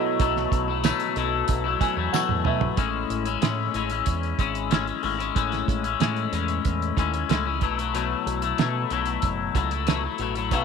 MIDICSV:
0, 0, Header, 1, 6, 480
1, 0, Start_track
1, 0, Tempo, 645092
1, 144, Time_signature, 4, 2, 24, 8
1, 7921, End_track
2, 0, Start_track
2, 0, Title_t, "Upright piano"
2, 0, Program_c, 0, 0
2, 0, Control_c, 0, 64, 127
2, 0, Note_on_c, 0, 64, 74
2, 0, Note_on_c, 0, 66, 70
2, 0, Note_on_c, 0, 69, 61
2, 0, Note_on_c, 0, 75, 86
2, 1345, Note_on_c, 0, 80, 68
2, 1568, Note_off_c, 0, 80, 0
2, 1582, Note_on_c, 0, 78, 62
2, 1787, Note_off_c, 0, 64, 0
2, 1794, Note_off_c, 0, 66, 0
2, 1799, Note_off_c, 0, 69, 0
2, 1806, Note_off_c, 0, 75, 0
2, 1807, Note_off_c, 0, 78, 0
2, 1827, Note_on_c, 0, 76, 63
2, 2049, Note_off_c, 0, 76, 0
2, 2073, Control_c, 0, 64, 0
2, 2210, Control_c, 0, 64, 127
2, 5674, Control_c, 0, 64, 0
2, 7921, End_track
3, 0, Start_track
3, 0, Title_t, "Clean electric guitar"
3, 0, Program_c, 1, 27
3, 0, Note_on_c, 1, 47, 59
3, 0, Note_on_c, 1, 54, 68
3, 0, Note_on_c, 1, 57, 67
3, 0, Note_on_c, 1, 64, 77
3, 137, Note_off_c, 1, 47, 0
3, 142, Note_off_c, 1, 54, 0
3, 146, Note_off_c, 1, 57, 0
3, 146, Note_on_c, 1, 47, 87
3, 150, Note_off_c, 1, 64, 0
3, 150, Note_on_c, 1, 54, 87
3, 155, Note_on_c, 1, 57, 100
3, 159, Note_on_c, 1, 64, 96
3, 496, Note_off_c, 1, 64, 0
3, 504, Note_on_c, 1, 64, 57
3, 505, Note_off_c, 1, 47, 0
3, 508, Note_off_c, 1, 54, 0
3, 508, Note_off_c, 1, 57, 0
3, 516, Note_on_c, 1, 57, 51
3, 526, Note_on_c, 1, 54, 51
3, 618, Note_off_c, 1, 54, 0
3, 622, Note_off_c, 1, 57, 0
3, 622, Note_on_c, 1, 47, 84
3, 625, Note_off_c, 1, 64, 0
3, 627, Note_on_c, 1, 54, 82
3, 631, Note_on_c, 1, 57, 87
3, 636, Note_on_c, 1, 64, 94
3, 854, Note_off_c, 1, 47, 0
3, 861, Note_off_c, 1, 54, 0
3, 863, Note_on_c, 1, 47, 66
3, 868, Note_off_c, 1, 57, 0
3, 870, Note_off_c, 1, 64, 0
3, 870, Note_on_c, 1, 54, 58
3, 876, Note_on_c, 1, 57, 75
3, 882, Note_on_c, 1, 64, 66
3, 1211, Note_off_c, 1, 64, 0
3, 1220, Note_on_c, 1, 64, 59
3, 1221, Note_off_c, 1, 57, 0
3, 1224, Note_off_c, 1, 47, 0
3, 1227, Note_off_c, 1, 54, 0
3, 1230, Note_on_c, 1, 57, 58
3, 1239, Note_on_c, 1, 54, 52
3, 1339, Note_off_c, 1, 54, 0
3, 1339, Note_on_c, 1, 47, 63
3, 1342, Note_off_c, 1, 64, 0
3, 1344, Note_off_c, 1, 57, 0
3, 1348, Note_on_c, 1, 54, 64
3, 1353, Note_on_c, 1, 57, 64
3, 1361, Note_on_c, 1, 64, 73
3, 1453, Note_off_c, 1, 64, 0
3, 1462, Note_off_c, 1, 47, 0
3, 1462, Note_on_c, 1, 64, 59
3, 1464, Note_off_c, 1, 57, 0
3, 1466, Note_off_c, 1, 54, 0
3, 1473, Note_on_c, 1, 57, 47
3, 1481, Note_on_c, 1, 54, 50
3, 1580, Note_off_c, 1, 54, 0
3, 1583, Note_off_c, 1, 64, 0
3, 1585, Note_off_c, 1, 57, 0
3, 1585, Note_on_c, 1, 47, 82
3, 1589, Note_on_c, 1, 54, 86
3, 1594, Note_on_c, 1, 57, 86
3, 1597, Note_on_c, 1, 64, 90
3, 1809, Note_off_c, 1, 47, 0
3, 1818, Note_off_c, 1, 54, 0
3, 1818, Note_on_c, 1, 47, 60
3, 1824, Note_off_c, 1, 57, 0
3, 1827, Note_on_c, 1, 54, 62
3, 1831, Note_off_c, 1, 64, 0
3, 1833, Note_on_c, 1, 57, 68
3, 1839, Note_on_c, 1, 64, 66
3, 2058, Note_on_c, 1, 45, 79
3, 2062, Note_off_c, 1, 47, 0
3, 2062, Note_off_c, 1, 54, 0
3, 2064, Note_off_c, 1, 64, 0
3, 2065, Note_on_c, 1, 56, 89
3, 2066, Note_off_c, 1, 57, 0
3, 2069, Note_on_c, 1, 61, 88
3, 2073, Note_on_c, 1, 64, 92
3, 2412, Note_off_c, 1, 64, 0
3, 2421, Note_on_c, 1, 64, 51
3, 2422, Note_off_c, 1, 45, 0
3, 2423, Note_off_c, 1, 61, 0
3, 2425, Note_off_c, 1, 56, 0
3, 2432, Note_on_c, 1, 61, 50
3, 2441, Note_on_c, 1, 56, 41
3, 2538, Note_off_c, 1, 56, 0
3, 2541, Note_on_c, 1, 45, 75
3, 2542, Note_off_c, 1, 61, 0
3, 2543, Note_off_c, 1, 64, 0
3, 2547, Note_on_c, 1, 56, 82
3, 2551, Note_on_c, 1, 61, 81
3, 2555, Note_on_c, 1, 64, 84
3, 2773, Note_off_c, 1, 45, 0
3, 2780, Note_off_c, 1, 56, 0
3, 2782, Note_on_c, 1, 45, 57
3, 2788, Note_off_c, 1, 61, 0
3, 2789, Note_on_c, 1, 56, 58
3, 2790, Note_off_c, 1, 64, 0
3, 2796, Note_on_c, 1, 61, 65
3, 2802, Note_on_c, 1, 64, 67
3, 2892, Note_off_c, 1, 64, 0
3, 2901, Note_on_c, 1, 64, 50
3, 2903, Note_off_c, 1, 45, 0
3, 2904, Note_off_c, 1, 61, 0
3, 2907, Note_off_c, 1, 56, 0
3, 2913, Note_on_c, 1, 61, 49
3, 2921, Note_on_c, 1, 56, 40
3, 3260, Note_off_c, 1, 56, 0
3, 3263, Note_off_c, 1, 64, 0
3, 3265, Note_off_c, 1, 61, 0
3, 3269, Note_on_c, 1, 56, 63
3, 3274, Note_on_c, 1, 61, 66
3, 3281, Note_on_c, 1, 64, 64
3, 3498, Note_off_c, 1, 56, 0
3, 3501, Note_on_c, 1, 45, 79
3, 3502, Note_off_c, 1, 61, 0
3, 3507, Note_off_c, 1, 64, 0
3, 3507, Note_on_c, 1, 56, 85
3, 3511, Note_on_c, 1, 61, 93
3, 3516, Note_on_c, 1, 64, 82
3, 3611, Note_off_c, 1, 64, 0
3, 3620, Note_on_c, 1, 64, 52
3, 3623, Note_off_c, 1, 45, 0
3, 3623, Note_off_c, 1, 61, 0
3, 3626, Note_off_c, 1, 56, 0
3, 3632, Note_on_c, 1, 61, 52
3, 3640, Note_on_c, 1, 56, 44
3, 3735, Note_off_c, 1, 56, 0
3, 3736, Note_on_c, 1, 45, 60
3, 3741, Note_off_c, 1, 61, 0
3, 3742, Note_off_c, 1, 64, 0
3, 3744, Note_on_c, 1, 56, 60
3, 3750, Note_on_c, 1, 61, 58
3, 3756, Note_on_c, 1, 64, 66
3, 3849, Note_off_c, 1, 64, 0
3, 3858, Note_on_c, 1, 64, 58
3, 3860, Note_off_c, 1, 45, 0
3, 3862, Note_off_c, 1, 61, 0
3, 3864, Note_off_c, 1, 56, 0
3, 3871, Note_on_c, 1, 61, 54
3, 3880, Note_on_c, 1, 56, 49
3, 3979, Note_off_c, 1, 56, 0
3, 3981, Note_off_c, 1, 64, 0
3, 3981, Note_on_c, 1, 45, 85
3, 3985, Note_off_c, 1, 61, 0
3, 3988, Note_on_c, 1, 56, 76
3, 3994, Note_on_c, 1, 61, 89
3, 3996, Note_on_c, 1, 64, 79
3, 4333, Note_off_c, 1, 64, 0
3, 4342, Note_on_c, 1, 64, 45
3, 4343, Note_off_c, 1, 45, 0
3, 4345, Note_off_c, 1, 61, 0
3, 4347, Note_off_c, 1, 56, 0
3, 4354, Note_on_c, 1, 61, 45
3, 4365, Note_on_c, 1, 56, 41
3, 4462, Note_off_c, 1, 56, 0
3, 4464, Note_off_c, 1, 64, 0
3, 4464, Note_on_c, 1, 45, 84
3, 4467, Note_off_c, 1, 61, 0
3, 4471, Note_on_c, 1, 56, 86
3, 4476, Note_on_c, 1, 61, 86
3, 4478, Note_on_c, 1, 64, 82
3, 4693, Note_off_c, 1, 45, 0
3, 4701, Note_off_c, 1, 56, 0
3, 4701, Note_on_c, 1, 45, 57
3, 4708, Note_off_c, 1, 61, 0
3, 4710, Note_on_c, 1, 56, 66
3, 4712, Note_off_c, 1, 64, 0
3, 4717, Note_on_c, 1, 61, 62
3, 4722, Note_on_c, 1, 64, 65
3, 5176, Note_off_c, 1, 45, 0
3, 5185, Note_off_c, 1, 56, 0
3, 5185, Note_on_c, 1, 45, 62
3, 5191, Note_off_c, 1, 61, 0
3, 5194, Note_on_c, 1, 56, 64
3, 5200, Note_on_c, 1, 61, 69
3, 5204, Note_off_c, 1, 64, 0
3, 5207, Note_on_c, 1, 64, 73
3, 5295, Note_off_c, 1, 64, 0
3, 5304, Note_on_c, 1, 64, 48
3, 5305, Note_off_c, 1, 45, 0
3, 5307, Note_off_c, 1, 61, 0
3, 5310, Note_off_c, 1, 56, 0
3, 5316, Note_on_c, 1, 61, 45
3, 5326, Note_on_c, 1, 56, 41
3, 5421, Note_off_c, 1, 56, 0
3, 5424, Note_off_c, 1, 64, 0
3, 5425, Note_on_c, 1, 45, 85
3, 5426, Note_off_c, 1, 61, 0
3, 5430, Note_on_c, 1, 56, 90
3, 5435, Note_on_c, 1, 61, 86
3, 5439, Note_on_c, 1, 64, 87
3, 5537, Note_off_c, 1, 64, 0
3, 5545, Note_off_c, 1, 45, 0
3, 5545, Note_on_c, 1, 64, 63
3, 5546, Note_off_c, 1, 61, 0
3, 5548, Note_off_c, 1, 56, 0
3, 5555, Note_on_c, 1, 61, 55
3, 5564, Note_on_c, 1, 56, 51
3, 5664, Note_on_c, 1, 47, 59
3, 5665, Note_off_c, 1, 64, 0
3, 5670, Note_off_c, 1, 56, 0
3, 5670, Note_off_c, 1, 61, 0
3, 5673, Note_on_c, 1, 54, 58
3, 5679, Note_on_c, 1, 57, 66
3, 5685, Note_on_c, 1, 64, 65
3, 5779, Note_off_c, 1, 64, 0
3, 5785, Note_off_c, 1, 47, 0
3, 5788, Note_on_c, 1, 64, 60
3, 5789, Note_off_c, 1, 54, 0
3, 5789, Note_off_c, 1, 57, 0
3, 5798, Note_on_c, 1, 57, 48
3, 5809, Note_on_c, 1, 54, 50
3, 5907, Note_off_c, 1, 54, 0
3, 5907, Note_off_c, 1, 64, 0
3, 5908, Note_on_c, 1, 47, 76
3, 5912, Note_off_c, 1, 57, 0
3, 5916, Note_on_c, 1, 54, 89
3, 5920, Note_on_c, 1, 57, 83
3, 5923, Note_on_c, 1, 64, 87
3, 6257, Note_off_c, 1, 64, 0
3, 6266, Note_on_c, 1, 64, 55
3, 6267, Note_off_c, 1, 47, 0
3, 6270, Note_off_c, 1, 57, 0
3, 6271, Note_off_c, 1, 54, 0
3, 6279, Note_on_c, 1, 57, 45
3, 6287, Note_on_c, 1, 54, 42
3, 6384, Note_off_c, 1, 54, 0
3, 6386, Note_off_c, 1, 64, 0
3, 6386, Note_on_c, 1, 47, 79
3, 6387, Note_off_c, 1, 57, 0
3, 6393, Note_on_c, 1, 54, 77
3, 6396, Note_on_c, 1, 57, 90
3, 6401, Note_on_c, 1, 64, 89
3, 6617, Note_off_c, 1, 47, 0
3, 6624, Note_off_c, 1, 54, 0
3, 6626, Note_on_c, 1, 47, 65
3, 6631, Note_off_c, 1, 57, 0
3, 6633, Note_off_c, 1, 64, 0
3, 6633, Note_on_c, 1, 54, 64
3, 6639, Note_on_c, 1, 57, 68
3, 6645, Note_on_c, 1, 64, 68
3, 7095, Note_off_c, 1, 47, 0
3, 7103, Note_off_c, 1, 54, 0
3, 7104, Note_on_c, 1, 47, 70
3, 7112, Note_on_c, 1, 54, 69
3, 7115, Note_off_c, 1, 57, 0
3, 7118, Note_on_c, 1, 57, 61
3, 7122, Note_off_c, 1, 64, 0
3, 7125, Note_on_c, 1, 64, 72
3, 7221, Note_off_c, 1, 64, 0
3, 7225, Note_off_c, 1, 47, 0
3, 7229, Note_off_c, 1, 54, 0
3, 7230, Note_on_c, 1, 64, 55
3, 7232, Note_off_c, 1, 57, 0
3, 7240, Note_on_c, 1, 57, 44
3, 7250, Note_on_c, 1, 54, 38
3, 7345, Note_off_c, 1, 54, 0
3, 7346, Note_on_c, 1, 47, 84
3, 7347, Note_off_c, 1, 57, 0
3, 7347, Note_off_c, 1, 64, 0
3, 7354, Note_on_c, 1, 54, 77
3, 7356, Note_on_c, 1, 57, 97
3, 7362, Note_on_c, 1, 64, 91
3, 7459, Note_off_c, 1, 64, 0
3, 7466, Note_off_c, 1, 47, 0
3, 7468, Note_on_c, 1, 64, 59
3, 7469, Note_off_c, 1, 54, 0
3, 7471, Note_off_c, 1, 57, 0
3, 7480, Note_on_c, 1, 57, 52
3, 7489, Note_on_c, 1, 54, 45
3, 7586, Note_off_c, 1, 64, 0
3, 7588, Note_off_c, 1, 54, 0
3, 7589, Note_on_c, 1, 47, 62
3, 7593, Note_off_c, 1, 57, 0
3, 7597, Note_on_c, 1, 54, 58
3, 7605, Note_on_c, 1, 57, 64
3, 7610, Note_on_c, 1, 64, 64
3, 7697, Note_off_c, 1, 64, 0
3, 7706, Note_on_c, 1, 64, 60
3, 7707, Note_off_c, 1, 47, 0
3, 7708, Note_off_c, 1, 57, 0
3, 7711, Note_off_c, 1, 54, 0
3, 7717, Note_on_c, 1, 57, 53
3, 7726, Note_on_c, 1, 54, 48
3, 7823, Note_off_c, 1, 54, 0
3, 7825, Note_off_c, 1, 64, 0
3, 7827, Note_on_c, 1, 47, 87
3, 7828, Note_off_c, 1, 57, 0
3, 7832, Note_on_c, 1, 54, 96
3, 7837, Note_on_c, 1, 57, 92
3, 7842, Note_on_c, 1, 64, 93
3, 7921, Note_off_c, 1, 47, 0
3, 7921, Note_off_c, 1, 54, 0
3, 7921, Note_off_c, 1, 57, 0
3, 7921, Note_off_c, 1, 64, 0
3, 7921, End_track
4, 0, Start_track
4, 0, Title_t, "Fingered electric bass"
4, 0, Program_c, 2, 33
4, 146, Note_on_c, 2, 35, 97
4, 337, Note_off_c, 2, 35, 0
4, 385, Note_on_c, 2, 35, 102
4, 673, Note_off_c, 2, 35, 0
4, 865, Note_on_c, 2, 35, 92
4, 1057, Note_off_c, 2, 35, 0
4, 1106, Note_on_c, 2, 35, 105
4, 1298, Note_off_c, 2, 35, 0
4, 1464, Note_on_c, 2, 40, 87
4, 1560, Note_off_c, 2, 40, 0
4, 1703, Note_on_c, 2, 40, 92
4, 1800, Note_off_c, 2, 40, 0
4, 1826, Note_on_c, 2, 47, 89
4, 2018, Note_off_c, 2, 47, 0
4, 2064, Note_on_c, 2, 33, 100
4, 2256, Note_off_c, 2, 33, 0
4, 2305, Note_on_c, 2, 33, 92
4, 2497, Note_off_c, 2, 33, 0
4, 2546, Note_on_c, 2, 45, 92
4, 2737, Note_off_c, 2, 45, 0
4, 2785, Note_on_c, 2, 33, 88
4, 2977, Note_off_c, 2, 33, 0
4, 3028, Note_on_c, 2, 40, 89
4, 3219, Note_off_c, 2, 40, 0
4, 3263, Note_on_c, 2, 32, 87
4, 3648, Note_off_c, 2, 32, 0
4, 3746, Note_on_c, 2, 32, 80
4, 3938, Note_off_c, 2, 32, 0
4, 3987, Note_on_c, 2, 33, 84
4, 4178, Note_off_c, 2, 33, 0
4, 4225, Note_on_c, 2, 33, 95
4, 4417, Note_off_c, 2, 33, 0
4, 4464, Note_on_c, 2, 45, 93
4, 4656, Note_off_c, 2, 45, 0
4, 4705, Note_on_c, 2, 40, 88
4, 4897, Note_off_c, 2, 40, 0
4, 4951, Note_on_c, 2, 40, 96
4, 5141, Note_off_c, 2, 40, 0
4, 5187, Note_on_c, 2, 39, 91
4, 5379, Note_off_c, 2, 39, 0
4, 5427, Note_on_c, 2, 37, 87
4, 5668, Note_off_c, 2, 37, 0
4, 5668, Note_on_c, 2, 35, 89
4, 6051, Note_off_c, 2, 35, 0
4, 6148, Note_on_c, 2, 35, 93
4, 6339, Note_off_c, 2, 35, 0
4, 6389, Note_on_c, 2, 47, 110
4, 6579, Note_off_c, 2, 47, 0
4, 6627, Note_on_c, 2, 35, 84
4, 6819, Note_off_c, 2, 35, 0
4, 6868, Note_on_c, 2, 30, 90
4, 7059, Note_off_c, 2, 30, 0
4, 7105, Note_on_c, 2, 37, 94
4, 7489, Note_off_c, 2, 37, 0
4, 7582, Note_on_c, 2, 33, 82
4, 7824, Note_off_c, 2, 33, 0
4, 7824, Note_on_c, 2, 35, 89
4, 7921, Note_off_c, 2, 35, 0
4, 7921, End_track
5, 0, Start_track
5, 0, Title_t, "Muted fingered electric bass strokes"
5, 1582, Note_on_c, 9, 29, 45
5, 1656, Note_off_c, 9, 29, 0
5, 7921, End_track
6, 0, Start_track
6, 0, Title_t, "Drums"
6, 146, Note_on_c, 9, 42, 90
6, 147, Note_on_c, 9, 36, 99
6, 220, Note_off_c, 9, 42, 0
6, 221, Note_off_c, 9, 36, 0
6, 271, Note_on_c, 9, 38, 35
6, 346, Note_off_c, 9, 38, 0
6, 386, Note_on_c, 9, 36, 92
6, 391, Note_on_c, 9, 42, 76
6, 460, Note_off_c, 9, 36, 0
6, 466, Note_off_c, 9, 42, 0
6, 623, Note_on_c, 9, 42, 93
6, 625, Note_on_c, 9, 54, 69
6, 631, Note_on_c, 9, 38, 108
6, 697, Note_off_c, 9, 42, 0
6, 699, Note_off_c, 9, 54, 0
6, 706, Note_off_c, 9, 38, 0
6, 741, Note_on_c, 9, 42, 54
6, 815, Note_off_c, 9, 42, 0
6, 863, Note_on_c, 9, 42, 57
6, 938, Note_off_c, 9, 42, 0
6, 1099, Note_on_c, 9, 42, 90
6, 1107, Note_on_c, 9, 36, 87
6, 1174, Note_off_c, 9, 42, 0
6, 1182, Note_off_c, 9, 36, 0
6, 1345, Note_on_c, 9, 36, 97
6, 1347, Note_on_c, 9, 42, 84
6, 1419, Note_off_c, 9, 36, 0
6, 1422, Note_off_c, 9, 42, 0
6, 1590, Note_on_c, 9, 54, 74
6, 1594, Note_on_c, 9, 38, 60
6, 1664, Note_off_c, 9, 54, 0
6, 1668, Note_off_c, 9, 38, 0
6, 1704, Note_on_c, 9, 48, 62
6, 1779, Note_off_c, 9, 48, 0
6, 1821, Note_on_c, 9, 45, 87
6, 1896, Note_off_c, 9, 45, 0
6, 1942, Note_on_c, 9, 43, 97
6, 2017, Note_off_c, 9, 43, 0
6, 2063, Note_on_c, 9, 42, 86
6, 2065, Note_on_c, 9, 36, 102
6, 2138, Note_off_c, 9, 42, 0
6, 2139, Note_off_c, 9, 36, 0
6, 2309, Note_on_c, 9, 42, 64
6, 2383, Note_off_c, 9, 42, 0
6, 2422, Note_on_c, 9, 42, 52
6, 2497, Note_off_c, 9, 42, 0
6, 2543, Note_on_c, 9, 42, 85
6, 2552, Note_on_c, 9, 38, 101
6, 2618, Note_off_c, 9, 42, 0
6, 2626, Note_off_c, 9, 38, 0
6, 2784, Note_on_c, 9, 42, 55
6, 2859, Note_off_c, 9, 42, 0
6, 2899, Note_on_c, 9, 42, 54
6, 2973, Note_off_c, 9, 42, 0
6, 3020, Note_on_c, 9, 42, 85
6, 3027, Note_on_c, 9, 36, 81
6, 3095, Note_off_c, 9, 42, 0
6, 3102, Note_off_c, 9, 36, 0
6, 3149, Note_on_c, 9, 42, 32
6, 3224, Note_off_c, 9, 42, 0
6, 3265, Note_on_c, 9, 36, 95
6, 3267, Note_on_c, 9, 42, 78
6, 3339, Note_off_c, 9, 36, 0
6, 3341, Note_off_c, 9, 42, 0
6, 3386, Note_on_c, 9, 42, 49
6, 3461, Note_off_c, 9, 42, 0
6, 3503, Note_on_c, 9, 42, 87
6, 3515, Note_on_c, 9, 38, 94
6, 3578, Note_off_c, 9, 42, 0
6, 3590, Note_off_c, 9, 38, 0
6, 3627, Note_on_c, 9, 42, 31
6, 3701, Note_off_c, 9, 42, 0
6, 3741, Note_on_c, 9, 46, 41
6, 3816, Note_off_c, 9, 46, 0
6, 3872, Note_on_c, 9, 42, 57
6, 3947, Note_off_c, 9, 42, 0
6, 3988, Note_on_c, 9, 36, 99
6, 3988, Note_on_c, 9, 42, 91
6, 4062, Note_off_c, 9, 36, 0
6, 4063, Note_off_c, 9, 42, 0
6, 4108, Note_on_c, 9, 42, 33
6, 4116, Note_on_c, 9, 38, 32
6, 4182, Note_off_c, 9, 42, 0
6, 4190, Note_off_c, 9, 38, 0
6, 4227, Note_on_c, 9, 36, 84
6, 4234, Note_on_c, 9, 42, 71
6, 4302, Note_off_c, 9, 36, 0
6, 4308, Note_off_c, 9, 42, 0
6, 4346, Note_on_c, 9, 42, 57
6, 4421, Note_off_c, 9, 42, 0
6, 4468, Note_on_c, 9, 42, 86
6, 4476, Note_on_c, 9, 38, 103
6, 4542, Note_off_c, 9, 42, 0
6, 4550, Note_off_c, 9, 38, 0
6, 4587, Note_on_c, 9, 42, 33
6, 4661, Note_off_c, 9, 42, 0
6, 4708, Note_on_c, 9, 42, 61
6, 4783, Note_off_c, 9, 42, 0
6, 4823, Note_on_c, 9, 42, 49
6, 4898, Note_off_c, 9, 42, 0
6, 4946, Note_on_c, 9, 42, 78
6, 4951, Note_on_c, 9, 36, 88
6, 5021, Note_off_c, 9, 42, 0
6, 5025, Note_off_c, 9, 36, 0
6, 5077, Note_on_c, 9, 42, 38
6, 5151, Note_off_c, 9, 42, 0
6, 5188, Note_on_c, 9, 36, 89
6, 5192, Note_on_c, 9, 42, 77
6, 5262, Note_off_c, 9, 36, 0
6, 5266, Note_off_c, 9, 42, 0
6, 5310, Note_on_c, 9, 42, 47
6, 5384, Note_off_c, 9, 42, 0
6, 5428, Note_on_c, 9, 42, 80
6, 5440, Note_on_c, 9, 38, 93
6, 5502, Note_off_c, 9, 42, 0
6, 5514, Note_off_c, 9, 38, 0
6, 5664, Note_on_c, 9, 42, 55
6, 5668, Note_on_c, 9, 36, 88
6, 5738, Note_off_c, 9, 42, 0
6, 5743, Note_off_c, 9, 36, 0
6, 5796, Note_on_c, 9, 42, 59
6, 5870, Note_off_c, 9, 42, 0
6, 5913, Note_on_c, 9, 42, 82
6, 5987, Note_off_c, 9, 42, 0
6, 6155, Note_on_c, 9, 42, 67
6, 6229, Note_off_c, 9, 42, 0
6, 6266, Note_on_c, 9, 42, 55
6, 6340, Note_off_c, 9, 42, 0
6, 6386, Note_on_c, 9, 42, 83
6, 6395, Note_on_c, 9, 38, 100
6, 6461, Note_off_c, 9, 42, 0
6, 6469, Note_off_c, 9, 38, 0
6, 6626, Note_on_c, 9, 42, 59
6, 6700, Note_off_c, 9, 42, 0
6, 6738, Note_on_c, 9, 42, 54
6, 6812, Note_off_c, 9, 42, 0
6, 6861, Note_on_c, 9, 42, 86
6, 6868, Note_on_c, 9, 36, 88
6, 6935, Note_off_c, 9, 42, 0
6, 6943, Note_off_c, 9, 36, 0
6, 7105, Note_on_c, 9, 36, 94
6, 7108, Note_on_c, 9, 42, 69
6, 7180, Note_off_c, 9, 36, 0
6, 7183, Note_off_c, 9, 42, 0
6, 7226, Note_on_c, 9, 42, 46
6, 7300, Note_off_c, 9, 42, 0
6, 7343, Note_on_c, 9, 42, 81
6, 7354, Note_on_c, 9, 38, 98
6, 7417, Note_off_c, 9, 42, 0
6, 7429, Note_off_c, 9, 38, 0
6, 7576, Note_on_c, 9, 42, 57
6, 7651, Note_off_c, 9, 42, 0
6, 7705, Note_on_c, 9, 42, 56
6, 7779, Note_off_c, 9, 42, 0
6, 7823, Note_on_c, 9, 42, 87
6, 7824, Note_on_c, 9, 36, 89
6, 7897, Note_off_c, 9, 42, 0
6, 7899, Note_off_c, 9, 36, 0
6, 7921, End_track
0, 0, End_of_file